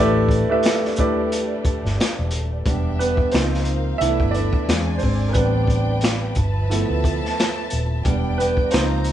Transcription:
0.00 0.43 A1 loud
0.00 2.63 G3 medium
0.00 0.38 A3 loud
0.00 2.63 A3 medium
0.00 2.63 D4 medium
0.00 0.38 E4 loud
0.00 0.38 G4 medium
0.00 0.39 B4 loud
0.00 0.39 D5 loud
0.28 kick medium
0.28 closed hi-hat medium
0.49 0.89 A3 medium
0.49 0.89 E4 medium
0.49 0.90 G4 medium
0.49 0.90 B4 medium
0.49 0.90 E5 medium
0.63 finger snap medium
0.63 snare loud
0.63 closed hi-hat medium
0.85 snare soft
0.96 2.07 A3 medium
0.96 2.08 E4 medium
0.96 2.08 G4 medium
0.96 2.08 B4 medium
0.96 2.09 D5 medium
0.96 kick medium
0.96 closed hi-hat medium
1.32 closed hi-hat medium
1.65 muted fingered electric bass stroke soft
1.65 kick loud
1.65 closed hi-hat medium
1.85 1.97 G1 medium
1.85 snare soft
2.00 finger snap medium
2.00 snare medium
2.00 closed hi-hat medium
2.19 2.33 E1 medium
2.31 2.62 D#1 medium
2.31 closed hi-hat medium
2.66 3.25 E1 loud
2.66 3.30 G3 soft
2.66 3.00 B3 soft
2.66 3.33 D4 medium
2.66 3.31 D4 medium
2.66 3.33 G4 medium
2.66 3.33 E5 medium
2.66 kick loud
2.66 closed hi-hat medium
2.99 3.32 B3 medium
2.99 3.34 B4 medium
2.99 closed hi-hat medium
3.17 kick medium
3.32 3.93 C#2 loud
3.32 3.97 F3 soft
3.32 3.98 A#3 soft
3.32 3.98 C4 medium
3.32 4.00 D#4 medium
3.32 3.98 D#4 medium
3.32 4.00 A#4 medium
3.32 4.02 C5 medium
3.32 4.00 C5 medium
3.32 4.00 F5 medium
3.32 finger snap medium
3.32 snare loud
3.32 closed hi-hat medium
3.54 snare soft
3.65 closed hi-hat medium
3.98 4.18 C2 medium
3.98 4.47 E3 medium
3.98 4.48 A3 soft
3.98 4.48 B3 soft
3.98 6.34 D4 medium
3.98 4.67 A4 medium
3.98 4.67 B4 medium
3.98 4.31 E5 loud
3.98 4.67 E5 medium
3.98 closed hi-hat medium
4.02 4.34 D4 medium
4.02 4.33 E4 medium
4.20 4.49 G1 medium
4.20 kick medium
4.31 5.02 D5 medium
4.31 closed hi-hat medium
4.36 4.68 D4 medium
4.53 kick loud
4.67 4.98 E2 medium
4.67 5.32 G#3 soft
4.67 5.02 C4 soft
4.67 5.33 D4 medium
4.67 6.35 D5 medium
4.67 5.35 G#5 medium
4.67 finger snap medium
4.67 snare medium
4.67 closed hi-hat medium
4.98 5.29 C5 medium
4.98 open hi-hat soft
5.03 5.32 G#1 medium
5.03 5.28 C4 medium
5.03 kick medium
5.28 5.35 A#4 soft
5.33 6.33 A1 medium
5.33 6.33 G3 medium
5.33 6.34 B3 medium
5.33 6.33 C4 medium
5.33 6.33 D4 medium
5.33 6.31 B4 medium
5.33 8.02 B4 medium
5.33 6.36 G5 medium
5.33 kick loud
5.33 closed hi-hat medium
5.67 kick medium
5.67 closed hi-hat medium
6.01 finger snap medium
6.01 snare loud
6.01 closed hi-hat medium
6.35 6.83 G1 loud
6.35 8.04 F3 medium
6.35 8.04 E5 medium
6.35 8.04 A5 medium
6.35 kick medium
6.35 closed hi-hat medium
6.70 8.01 F3 medium
6.70 8.01 A3 medium
6.70 8.01 B3 soft
6.70 8.01 E4 medium
6.70 closed hi-hat medium
6.90 7.19 D2 medium
7.04 kick medium
7.04 closed hi-hat medium
7.25 snare soft
7.39 finger snap medium
7.39 snare medium
7.39 closed hi-hat medium
7.70 8.02 D#1 medium
7.70 closed hi-hat medium
8.04 8.65 E1 loud
8.04 8.70 G3 medium
8.04 8.38 B3 soft
8.04 8.70 D4 medium
8.04 8.72 E4 medium
8.04 8.71 D5 medium
8.04 8.71 G5 medium
8.04 kick loud
8.04 closed hi-hat medium
8.38 8.71 B3 medium
8.38 8.70 B4 medium
8.38 closed hi-hat medium
8.57 kick medium
8.71 9.12 C#2 loud
8.71 9.12 F3 medium
8.71 9.12 A#3 soft
8.71 9.12 C4 medium
8.71 9.12 D#4 medium
8.71 9.12 C5 medium
8.71 9.12 F5 medium
8.71 9.12 A#5 medium
8.71 finger snap medium
8.71 snare loud
8.71 closed hi-hat medium
9.04 closed hi-hat medium

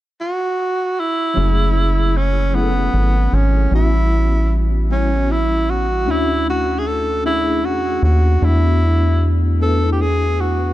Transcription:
0.21 1.01 F#4 medium
1.00 2.18 E4 medium
1.34 2.89 F#1 medium
1.34 2.35 F#3 medium
1.34 2.35 A3 medium
1.34 2.35 C#4 medium
1.34 2.36 E4 medium
1.34 2.36 G#4 medium
2.16 2.57 C#4 medium
2.53 3.53 F#3 soft
2.53 3.53 A3 soft
2.53 3.37 B3 medium
2.53 3.54 C#4 soft
2.53 3.54 E4 soft
2.53 2.61 G#4 soft
2.63 3.58 A4 medium
2.94 3.28 G#1 medium
3.33 3.67 G#1 medium
3.33 3.72 C#4 medium
3.70 6.09 A1 medium
3.70 4.70 G3 medium
3.70 4.71 B3 medium
3.70 4.71 C#4 medium
3.70 4.72 E4 medium
3.70 4.72 F#4 medium
3.75 4.60 E4 medium
4.89 5.88 G3 medium
4.89 5.89 B3 soft
4.89 5.89 C#4 soft
4.89 5.33 C#4 medium
4.89 5.90 E4 soft
4.89 5.90 F#4 medium
5.31 5.72 E4 medium
5.70 6.12 F#4 medium
6.06 7.65 D2 medium
6.06 7.06 A3 medium
6.06 7.06 C#4 medium
6.06 7.07 D4 medium
6.06 7.07 E4 medium
6.06 7.08 F#4 medium
6.11 6.48 E4 medium
6.50 6.80 F#4 medium
6.79 6.89 G#4 medium
6.88 7.25 A4 medium
7.24 8.24 A3 medium
7.24 8.24 C#4 soft
7.24 8.24 D4 soft
7.24 7.67 E4 medium
7.24 8.25 E4 soft
7.24 8.25 G#4 medium
7.64 7.99 E2 medium
7.64 8.03 F#4 medium
8.03 8.38 D#2 medium
8.03 8.46 F#4 medium
8.41 10.73 E2 medium
8.41 8.48 G#3 medium
8.41 9.41 B3 medium
8.41 9.42 D4 medium
8.41 9.42 E4 medium
8.41 9.43 F#4 medium
8.45 9.44 A3 medium
8.45 9.34 E4 medium
9.59 10.59 A3 medium
9.59 10.59 B3 soft
9.59 10.60 D4 soft
9.59 10.60 E4 soft
9.59 9.91 A4 medium
9.59 10.60 B4 medium
9.92 10.03 G4 medium
10.01 10.42 G#4 medium
10.40 10.73 F#4 medium

